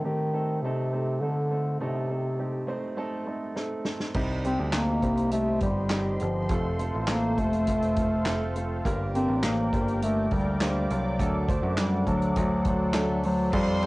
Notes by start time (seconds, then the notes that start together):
Already playing: A1 A2 A3 C4 D#4 A4
0.04 D#3 A3 C4 D#4 G4
0.33 A3 C4 D#4 A4
0.62 C3 A3 C4 D#4 A4
0.93 A3 C4 D#4 A4
1.21 D3 A3 C4 D#4 A4
1.51 A3 C4 D#4 A4
1.80 A1 A2 C3 A3 C4 D#4 A4
2.09 A3 C4 D#4 A4
2.39 A3 C4 D#4 G4
2.67 A3 C4 D#4 C5
2.97 A3 C4 D#4 A4
3.26 A3 C4 D#4 A4
3.55 A3 C4 D#4 A4, snare
3.84 A3 C4 D#4 A4, snare
4.00 snare
4.14 C2 C3 G3 C4 D#4 G4 C5 D#5 C6, kick, crash
4.44 G3 C4 D#4 G4, closed hi-hat
4.59 D2
4.73 G3 A#3 C4 D#4 G4, snare, clap, closed hi-hat
5.02 C2 G3 C4 D#4 G4, kick, closed hi-hat
5.17 closed hi-hat
5.31 G3 A3 C4 D#4 G4, closed hi-hat
5.60 G1 G3 C4 D#4 G4, kick, closed hi-hat
5.90 G3 C4 D#4 G4, snare, clap, closed hi-hat
6.20 G1 F3 G3 C4 D#4 G4, closed hi-hat
6.49 F1 A3 C4 F4 A4 C5 F5, kick, closed hi-hat
6.79 A3 C4 F4 A4, closed hi-hat
6.95 A1
7.07 A3 A#3 C4 F4 A4, snare, clap, closed hi-hat
7.38 F1 A3 C4 F4 A4, kick, closed hi-hat
7.53 closed hi-hat
7.67 F1 A3 C4 F4 A4, kick, closed hi-hat
7.82 closed hi-hat
7.96 A3 C4 F4 A4, kick, closed hi-hat
8.26 A3 C4 F4 A4, snare, clap, closed hi-hat
8.56 A3 C4 F4 A4, closed hi-hat
8.85 G1 G2 A#3 D4 G4 A#4 D5 G5 D6, kick, closed hi-hat
9.15 A#3 C4 D4 G4 A#4, closed hi-hat
9.28 A1
9.43 A#3 D4 G4 C5, snare, clap, closed hi-hat
9.73 G1 A#3 D4 G4 C5, kick, closed hi-hat
9.88 closed hi-hat
10.02 A3 A#3 D4 G4 A#4, closed hi-hat
10.31 D2 G3 A#3 D4 G4 A#4, kick, closed hi-hat
10.61 A#3 D4 G4 C5, snare, clap, closed hi-hat
10.90 C2 F#3 A#3 D4 G4 C5, closed hi-hat
11.19 D2 D3 A3 D4 F#4 A4 F#5, kick, closed hi-hat
11.48 A3 D4 F#4 C5, kick, closed hi-hat
11.63 F#2
11.77 G3 A3 D4 F#4 C5, snare, clap, closed hi-hat
12.07 D2 F#3 A3 D4 F#4 A4, kick, closed hi-hat
12.22 closed hi-hat
12.36 D2 A3 D4 F#4 C5, kick, closed hi-hat
12.65 F#3 A3 D4 F#4 C5, kick, closed hi-hat
12.94 A3 D4 F#4 A4, snare, clap, closed hi-hat
13.23 F#3 A3 D4 F#4 C5, open hi-hat
13.53 F2 G3 C4 F4 G4 A4 C5 F5 G5 C6, kick, crash
13.82 C4 F4 G4, ride